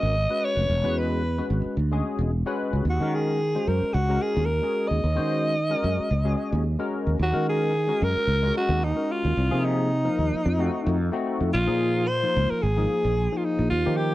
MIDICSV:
0, 0, Header, 1, 5, 480
1, 0, Start_track
1, 0, Tempo, 541516
1, 624, Time_signature, 4, 2, 24, 8
1, 12538, End_track
2, 0, Start_track
2, 0, Title_t, "Alto saxophone"
2, 0, Program_c, 0, 65
2, 0, Note_on_c, 0, 75, 93
2, 394, Note_on_c, 0, 73, 82
2, 408, Note_off_c, 0, 75, 0
2, 872, Note_on_c, 0, 71, 69
2, 885, Note_off_c, 0, 73, 0
2, 1348, Note_off_c, 0, 71, 0
2, 2567, Note_on_c, 0, 66, 65
2, 2787, Note_on_c, 0, 68, 79
2, 2800, Note_off_c, 0, 66, 0
2, 3262, Note_on_c, 0, 70, 75
2, 3275, Note_off_c, 0, 68, 0
2, 3486, Note_on_c, 0, 66, 73
2, 3499, Note_off_c, 0, 70, 0
2, 3735, Note_on_c, 0, 68, 83
2, 3748, Note_off_c, 0, 66, 0
2, 3947, Note_on_c, 0, 70, 79
2, 3960, Note_off_c, 0, 68, 0
2, 4324, Note_on_c, 0, 75, 78
2, 4338, Note_off_c, 0, 70, 0
2, 5889, Note_off_c, 0, 75, 0
2, 6404, Note_on_c, 0, 66, 78
2, 6616, Note_off_c, 0, 66, 0
2, 6638, Note_on_c, 0, 68, 89
2, 7121, Note_on_c, 0, 70, 101
2, 7134, Note_off_c, 0, 68, 0
2, 7591, Note_off_c, 0, 70, 0
2, 7596, Note_on_c, 0, 66, 89
2, 7835, Note_on_c, 0, 63, 83
2, 7848, Note_off_c, 0, 66, 0
2, 8078, Note_on_c, 0, 65, 75
2, 8091, Note_off_c, 0, 63, 0
2, 8550, Note_on_c, 0, 63, 72
2, 8563, Note_off_c, 0, 65, 0
2, 9986, Note_off_c, 0, 63, 0
2, 10224, Note_on_c, 0, 65, 93
2, 10702, Note_on_c, 0, 72, 87
2, 10715, Note_off_c, 0, 65, 0
2, 11080, Note_on_c, 0, 70, 81
2, 11093, Note_off_c, 0, 72, 0
2, 11189, Note_on_c, 0, 68, 80
2, 11203, Note_off_c, 0, 70, 0
2, 11848, Note_on_c, 0, 65, 55
2, 11861, Note_off_c, 0, 68, 0
2, 11920, Note_on_c, 0, 63, 71
2, 11933, Note_off_c, 0, 65, 0
2, 12137, Note_off_c, 0, 63, 0
2, 12142, Note_on_c, 0, 65, 78
2, 12377, Note_on_c, 0, 67, 79
2, 12391, Note_off_c, 0, 65, 0
2, 12538, Note_off_c, 0, 67, 0
2, 12538, End_track
3, 0, Start_track
3, 0, Title_t, "Tine electric piano"
3, 0, Program_c, 1, 4
3, 0, Note_on_c, 1, 56, 65
3, 0, Note_on_c, 1, 61, 65
3, 0, Note_on_c, 1, 66, 66
3, 0, Note_on_c, 1, 70, 68
3, 112, Note_off_c, 1, 61, 0
3, 113, Note_off_c, 1, 56, 0
3, 118, Note_off_c, 1, 66, 0
3, 118, Note_off_c, 1, 70, 0
3, 262, Note_on_c, 1, 56, 57
3, 265, Note_on_c, 1, 66, 57
3, 267, Note_on_c, 1, 61, 57
3, 269, Note_on_c, 1, 71, 69
3, 594, Note_off_c, 1, 56, 0
3, 595, Note_off_c, 1, 66, 0
3, 596, Note_off_c, 1, 61, 0
3, 598, Note_off_c, 1, 71, 0
3, 738, Note_on_c, 1, 56, 78
3, 744, Note_on_c, 1, 61, 68
3, 744, Note_on_c, 1, 66, 69
3, 751, Note_on_c, 1, 71, 84
3, 1072, Note_off_c, 1, 56, 0
3, 1075, Note_off_c, 1, 61, 0
3, 1075, Note_off_c, 1, 66, 0
3, 1078, Note_off_c, 1, 71, 0
3, 1224, Note_on_c, 1, 56, 62
3, 1225, Note_on_c, 1, 61, 56
3, 1227, Note_on_c, 1, 66, 57
3, 1227, Note_on_c, 1, 71, 72
3, 1555, Note_off_c, 1, 56, 0
3, 1555, Note_off_c, 1, 61, 0
3, 1557, Note_off_c, 1, 66, 0
3, 1557, Note_off_c, 1, 71, 0
3, 1695, Note_on_c, 1, 56, 82
3, 1706, Note_on_c, 1, 66, 64
3, 1707, Note_on_c, 1, 61, 72
3, 1707, Note_on_c, 1, 68, 83
3, 2031, Note_off_c, 1, 56, 0
3, 2036, Note_off_c, 1, 66, 0
3, 2036, Note_off_c, 1, 68, 0
3, 2037, Note_off_c, 1, 61, 0
3, 2179, Note_on_c, 1, 56, 84
3, 2182, Note_on_c, 1, 66, 73
3, 2184, Note_on_c, 1, 61, 83
3, 2190, Note_on_c, 1, 71, 91
3, 2513, Note_off_c, 1, 56, 0
3, 2514, Note_off_c, 1, 66, 0
3, 2515, Note_off_c, 1, 61, 0
3, 2518, Note_off_c, 1, 71, 0
3, 2666, Note_on_c, 1, 56, 67
3, 2668, Note_on_c, 1, 61, 66
3, 2678, Note_on_c, 1, 66, 68
3, 2679, Note_on_c, 1, 70, 77
3, 2996, Note_off_c, 1, 56, 0
3, 2997, Note_off_c, 1, 61, 0
3, 3002, Note_off_c, 1, 66, 0
3, 3002, Note_off_c, 1, 70, 0
3, 3146, Note_on_c, 1, 56, 64
3, 3147, Note_on_c, 1, 66, 59
3, 3148, Note_on_c, 1, 61, 60
3, 3153, Note_on_c, 1, 72, 68
3, 3476, Note_off_c, 1, 56, 0
3, 3476, Note_off_c, 1, 61, 0
3, 3476, Note_off_c, 1, 66, 0
3, 3479, Note_off_c, 1, 72, 0
3, 3624, Note_on_c, 1, 61, 66
3, 3625, Note_on_c, 1, 56, 71
3, 3628, Note_on_c, 1, 66, 63
3, 3639, Note_on_c, 1, 70, 77
3, 3954, Note_off_c, 1, 61, 0
3, 3955, Note_off_c, 1, 56, 0
3, 3957, Note_off_c, 1, 66, 0
3, 3962, Note_off_c, 1, 70, 0
3, 4092, Note_on_c, 1, 56, 62
3, 4095, Note_on_c, 1, 61, 55
3, 4102, Note_on_c, 1, 66, 59
3, 4110, Note_on_c, 1, 68, 73
3, 4428, Note_off_c, 1, 56, 0
3, 4430, Note_off_c, 1, 61, 0
3, 4433, Note_off_c, 1, 66, 0
3, 4437, Note_off_c, 1, 68, 0
3, 4568, Note_on_c, 1, 56, 72
3, 4570, Note_on_c, 1, 61, 72
3, 4577, Note_on_c, 1, 66, 72
3, 4580, Note_on_c, 1, 72, 88
3, 4906, Note_off_c, 1, 56, 0
3, 4907, Note_off_c, 1, 61, 0
3, 4911, Note_off_c, 1, 66, 0
3, 4912, Note_off_c, 1, 72, 0
3, 5050, Note_on_c, 1, 56, 71
3, 5057, Note_on_c, 1, 61, 73
3, 5060, Note_on_c, 1, 70, 86
3, 5064, Note_on_c, 1, 66, 69
3, 5387, Note_off_c, 1, 56, 0
3, 5390, Note_off_c, 1, 61, 0
3, 5392, Note_off_c, 1, 70, 0
3, 5394, Note_off_c, 1, 66, 0
3, 5537, Note_on_c, 1, 56, 72
3, 5539, Note_on_c, 1, 61, 72
3, 5539, Note_on_c, 1, 66, 65
3, 5545, Note_on_c, 1, 68, 81
3, 5870, Note_off_c, 1, 56, 0
3, 5871, Note_off_c, 1, 61, 0
3, 5871, Note_off_c, 1, 66, 0
3, 5874, Note_off_c, 1, 68, 0
3, 6017, Note_on_c, 1, 56, 78
3, 6020, Note_on_c, 1, 61, 76
3, 6022, Note_on_c, 1, 66, 70
3, 6025, Note_on_c, 1, 70, 87
3, 6350, Note_off_c, 1, 56, 0
3, 6351, Note_off_c, 1, 61, 0
3, 6353, Note_off_c, 1, 66, 0
3, 6354, Note_off_c, 1, 70, 0
3, 6491, Note_on_c, 1, 56, 71
3, 6496, Note_on_c, 1, 61, 69
3, 6501, Note_on_c, 1, 66, 68
3, 6501, Note_on_c, 1, 70, 86
3, 6827, Note_off_c, 1, 56, 0
3, 6829, Note_off_c, 1, 61, 0
3, 6832, Note_off_c, 1, 66, 0
3, 6832, Note_off_c, 1, 70, 0
3, 6977, Note_on_c, 1, 56, 69
3, 6980, Note_on_c, 1, 61, 56
3, 6984, Note_on_c, 1, 66, 61
3, 6991, Note_on_c, 1, 70, 71
3, 7310, Note_off_c, 1, 56, 0
3, 7311, Note_off_c, 1, 61, 0
3, 7313, Note_off_c, 1, 66, 0
3, 7316, Note_off_c, 1, 70, 0
3, 7465, Note_on_c, 1, 56, 77
3, 7477, Note_on_c, 1, 61, 61
3, 7478, Note_on_c, 1, 66, 61
3, 7483, Note_on_c, 1, 70, 79
3, 7793, Note_off_c, 1, 56, 0
3, 7800, Note_off_c, 1, 61, 0
3, 7800, Note_off_c, 1, 66, 0
3, 7803, Note_off_c, 1, 70, 0
3, 7932, Note_on_c, 1, 56, 59
3, 7938, Note_on_c, 1, 61, 58
3, 7938, Note_on_c, 1, 66, 61
3, 7947, Note_on_c, 1, 70, 67
3, 8267, Note_off_c, 1, 56, 0
3, 8270, Note_off_c, 1, 61, 0
3, 8270, Note_off_c, 1, 66, 0
3, 8274, Note_off_c, 1, 70, 0
3, 8428, Note_on_c, 1, 58, 74
3, 8429, Note_on_c, 1, 53, 73
3, 8431, Note_on_c, 1, 68, 87
3, 8433, Note_on_c, 1, 63, 64
3, 8755, Note_off_c, 1, 58, 0
3, 8756, Note_off_c, 1, 53, 0
3, 8756, Note_off_c, 1, 68, 0
3, 8758, Note_off_c, 1, 63, 0
3, 8901, Note_on_c, 1, 58, 60
3, 8902, Note_on_c, 1, 53, 68
3, 8908, Note_on_c, 1, 63, 58
3, 8908, Note_on_c, 1, 70, 70
3, 9232, Note_off_c, 1, 53, 0
3, 9232, Note_off_c, 1, 58, 0
3, 9235, Note_off_c, 1, 63, 0
3, 9235, Note_off_c, 1, 70, 0
3, 9384, Note_on_c, 1, 57, 75
3, 9388, Note_on_c, 1, 60, 68
3, 9388, Note_on_c, 1, 63, 66
3, 9395, Note_on_c, 1, 66, 91
3, 9714, Note_off_c, 1, 57, 0
3, 9716, Note_off_c, 1, 60, 0
3, 9716, Note_off_c, 1, 63, 0
3, 9719, Note_off_c, 1, 66, 0
3, 9857, Note_on_c, 1, 57, 89
3, 9866, Note_on_c, 1, 63, 78
3, 9867, Note_on_c, 1, 60, 80
3, 9867, Note_on_c, 1, 66, 94
3, 10190, Note_off_c, 1, 57, 0
3, 10195, Note_off_c, 1, 60, 0
3, 10195, Note_off_c, 1, 63, 0
3, 10195, Note_off_c, 1, 66, 0
3, 10343, Note_on_c, 1, 63, 64
3, 10346, Note_on_c, 1, 53, 81
3, 10347, Note_on_c, 1, 68, 80
3, 10348, Note_on_c, 1, 58, 69
3, 10674, Note_off_c, 1, 63, 0
3, 10675, Note_off_c, 1, 53, 0
3, 10676, Note_off_c, 1, 58, 0
3, 10676, Note_off_c, 1, 68, 0
3, 10841, Note_on_c, 1, 53, 66
3, 10844, Note_on_c, 1, 58, 65
3, 10847, Note_on_c, 1, 65, 75
3, 10849, Note_on_c, 1, 63, 63
3, 11163, Note_off_c, 1, 53, 0
3, 11165, Note_off_c, 1, 58, 0
3, 11166, Note_off_c, 1, 65, 0
3, 11167, Note_off_c, 1, 63, 0
3, 11317, Note_on_c, 1, 53, 70
3, 11322, Note_on_c, 1, 63, 70
3, 11324, Note_on_c, 1, 58, 69
3, 11326, Note_on_c, 1, 68, 77
3, 11642, Note_off_c, 1, 53, 0
3, 11644, Note_off_c, 1, 63, 0
3, 11645, Note_off_c, 1, 58, 0
3, 11646, Note_off_c, 1, 68, 0
3, 11805, Note_on_c, 1, 53, 65
3, 11806, Note_on_c, 1, 58, 57
3, 11808, Note_on_c, 1, 63, 63
3, 11813, Note_on_c, 1, 68, 64
3, 12126, Note_off_c, 1, 53, 0
3, 12127, Note_off_c, 1, 58, 0
3, 12128, Note_off_c, 1, 63, 0
3, 12130, Note_off_c, 1, 68, 0
3, 12278, Note_on_c, 1, 53, 78
3, 12282, Note_on_c, 1, 58, 70
3, 12285, Note_on_c, 1, 63, 63
3, 12285, Note_on_c, 1, 67, 84
3, 12538, Note_off_c, 1, 53, 0
3, 12538, Note_off_c, 1, 58, 0
3, 12538, Note_off_c, 1, 63, 0
3, 12538, Note_off_c, 1, 67, 0
3, 12538, End_track
4, 0, Start_track
4, 0, Title_t, "Fretless electric bass"
4, 0, Program_c, 2, 35
4, 24, Note_on_c, 2, 32, 86
4, 226, Note_off_c, 2, 32, 0
4, 502, Note_on_c, 2, 29, 73
4, 599, Note_off_c, 2, 29, 0
4, 614, Note_on_c, 2, 28, 91
4, 724, Note_off_c, 2, 28, 0
4, 739, Note_on_c, 2, 40, 71
4, 1236, Note_off_c, 2, 40, 0
4, 1330, Note_on_c, 2, 32, 73
4, 1442, Note_off_c, 2, 32, 0
4, 1568, Note_on_c, 2, 38, 76
4, 1774, Note_off_c, 2, 38, 0
4, 1937, Note_on_c, 2, 28, 91
4, 2143, Note_off_c, 2, 28, 0
4, 2419, Note_on_c, 2, 37, 63
4, 2518, Note_off_c, 2, 37, 0
4, 2526, Note_on_c, 2, 39, 87
4, 2639, Note_off_c, 2, 39, 0
4, 2659, Note_on_c, 2, 51, 71
4, 3156, Note_off_c, 2, 51, 0
4, 3256, Note_on_c, 2, 42, 69
4, 3365, Note_off_c, 2, 42, 0
4, 3494, Note_on_c, 2, 37, 88
4, 3697, Note_off_c, 2, 37, 0
4, 3869, Note_on_c, 2, 39, 87
4, 4069, Note_off_c, 2, 39, 0
4, 4350, Note_on_c, 2, 39, 67
4, 4444, Note_off_c, 2, 39, 0
4, 4465, Note_on_c, 2, 39, 83
4, 4570, Note_off_c, 2, 39, 0
4, 4594, Note_on_c, 2, 51, 67
4, 5084, Note_off_c, 2, 51, 0
4, 5176, Note_on_c, 2, 42, 80
4, 5284, Note_off_c, 2, 42, 0
4, 5413, Note_on_c, 2, 37, 83
4, 5616, Note_off_c, 2, 37, 0
4, 5783, Note_on_c, 2, 39, 87
4, 5985, Note_off_c, 2, 39, 0
4, 6263, Note_on_c, 2, 39, 70
4, 6359, Note_off_c, 2, 39, 0
4, 6377, Note_on_c, 2, 39, 91
4, 6484, Note_off_c, 2, 39, 0
4, 6510, Note_on_c, 2, 51, 65
4, 7001, Note_off_c, 2, 51, 0
4, 7108, Note_on_c, 2, 42, 85
4, 7211, Note_off_c, 2, 42, 0
4, 7332, Note_on_c, 2, 37, 85
4, 7535, Note_off_c, 2, 37, 0
4, 7701, Note_on_c, 2, 39, 88
4, 7903, Note_off_c, 2, 39, 0
4, 8195, Note_on_c, 2, 39, 78
4, 8286, Note_off_c, 2, 39, 0
4, 8306, Note_on_c, 2, 36, 92
4, 8409, Note_off_c, 2, 36, 0
4, 8440, Note_on_c, 2, 48, 73
4, 8927, Note_off_c, 2, 48, 0
4, 9028, Note_on_c, 2, 39, 70
4, 9130, Note_off_c, 2, 39, 0
4, 9268, Note_on_c, 2, 41, 94
4, 9464, Note_off_c, 2, 41, 0
4, 9630, Note_on_c, 2, 41, 100
4, 9829, Note_off_c, 2, 41, 0
4, 10109, Note_on_c, 2, 41, 71
4, 10203, Note_off_c, 2, 41, 0
4, 10229, Note_on_c, 2, 34, 102
4, 10332, Note_off_c, 2, 34, 0
4, 10351, Note_on_c, 2, 46, 77
4, 10843, Note_off_c, 2, 46, 0
4, 10959, Note_on_c, 2, 37, 86
4, 11058, Note_off_c, 2, 37, 0
4, 11195, Note_on_c, 2, 32, 94
4, 11390, Note_off_c, 2, 32, 0
4, 11563, Note_on_c, 2, 34, 93
4, 11758, Note_off_c, 2, 34, 0
4, 12044, Note_on_c, 2, 34, 77
4, 12133, Note_off_c, 2, 34, 0
4, 12154, Note_on_c, 2, 39, 87
4, 12256, Note_off_c, 2, 39, 0
4, 12291, Note_on_c, 2, 51, 71
4, 12538, Note_off_c, 2, 51, 0
4, 12538, End_track
5, 0, Start_track
5, 0, Title_t, "Muted fretless electric bass strokes"
5, 1466, Note_on_c, 9, 29, 34
5, 1555, Note_off_c, 9, 29, 0
5, 3387, Note_on_c, 9, 29, 29
5, 3476, Note_off_c, 9, 29, 0
5, 5312, Note_on_c, 9, 29, 31
5, 5400, Note_off_c, 9, 29, 0
5, 7236, Note_on_c, 9, 29, 34
5, 7325, Note_off_c, 9, 29, 0
5, 9160, Note_on_c, 9, 29, 34
5, 9249, Note_off_c, 9, 29, 0
5, 12538, End_track
0, 0, End_of_file